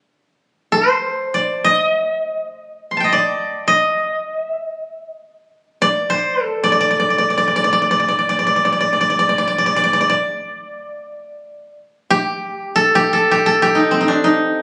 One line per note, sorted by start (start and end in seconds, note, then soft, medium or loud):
0.72 2.44 C5 medium
1.34 1.70 D5 medium
1.64 3.04 D#5 medium
2.91 4.04 C6 soft
2.97 4.35 G5 soft
2.97 4.22 A5 soft
3.04 3.67 D#5 soft
3.13 3.74 D5 medium
3.68 4.43 D#5 medium
4.43 4.63 E5 medium
4.63 4.85 D#5 medium
4.85 5.05 E5 medium
5.05 5.78 D#5 medium
5.82 6.63 D5 medium
6.10 6.43 C5 medium
6.43 7.81 A4 medium
6.64 6.71 D5 medium
6.72 6.80 D5 medium
6.81 6.90 D5 medium
6.91 6.99 D5 medium
7.00 7.10 D5 medium
7.10 7.18 D5 soft
7.18 7.30 D5 medium
7.30 7.37 D5 soft
7.38 7.47 D5 medium
7.48 7.56 D5 soft
7.56 7.64 D5 medium
7.64 7.72 D5 soft
7.73 7.81 D5 medium
7.82 7.90 D5 medium
7.91 7.99 D5 medium
8.00 8.08 D5 soft
8.08 8.18 D5 soft
8.19 8.29 D5 soft
8.29 8.38 D5 medium
8.39 8.46 D5 soft
8.47 8.56 D5 soft
8.56 8.65 D5 soft
8.65 8.72 D5 soft
8.72 8.80 D5 soft
8.81 8.92 D5 medium
8.93 9.00 D5 soft
9.01 9.09 D5 medium
9.10 9.19 D5 soft
9.19 9.29 D5 medium
9.29 9.38 D5 soft
9.38 9.47 D5 medium
9.48 9.58 D5 medium
9.58 9.66 D5 medium
9.66 9.76 D5 medium
9.76 9.83 D5 medium
9.84 9.93 D5 medium
9.93 10.00 D5 medium
10.01 10.09 D5 medium
10.10 11.70 D5 medium
12.10 12.95 G4 medium
12.76 13.13 A4 medium
12.95 13.31 G4 loud
13.13 13.46 A4 medium
13.31 13.62 G4 medium
13.46 14.62 A4 medium
13.62 14.62 G4 medium
13.75 14.00 D#4 medium
13.91 14.62 C4 medium
14.01 14.14 D#4 medium
14.08 14.30 D4 medium
14.24 14.62 D#4 medium